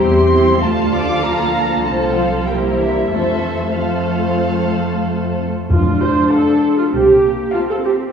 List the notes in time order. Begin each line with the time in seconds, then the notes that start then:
Already playing: G3 E4 G4 C5
0.02 E2 C4 G4 C6
0.33 G3 E4 G4 C5
0.62 D2 F3 A3 D4 F4 A4 F5 A5
0.92 D4 D6
1.23 A#3 A#5
1.85 C2 F3 A3 C4 F4 A4 C5 A5
2.14 F3 F5
2.46 G3 A#3 E4 A#4 C5 G5
2.78 E3 D4 E5
3.10 F2 E3 A3 C4 F4 A4 C5 E5
3.76 F3 A3 C4 F4 A4 C5 F5
5.70 F2 D4 F4
6.02 C5
6.31 A4 F5 A5 C6
6.78 F4
6.93 C2 C4 G4
7.23 A#3
7.53 C4 F4 F5 A5 C6
7.70 A4
7.84 G4